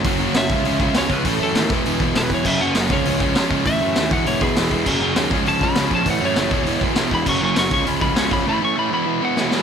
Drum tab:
CC |--------|--------|x-------|--------|
HH |o-o-o-o-|o-o-o-o-|--o-o-o-|o-o-o-o-|
SD |--o---o-|--o---o-|--o---o-|--o---o-|
BD |o--o-o-o|o--o-o-o|o--o-o-o|o--o-o-o|

CC |x-------|--------|x-------|--------|
HH |--o-o-o-|o-o-o-o-|--o-o-o-|--------|
SD |--o---o-|--o---o-|--o---o-|------oo|
BD |o--o-o-o|o--o-o-o|o--o-o-o|--------|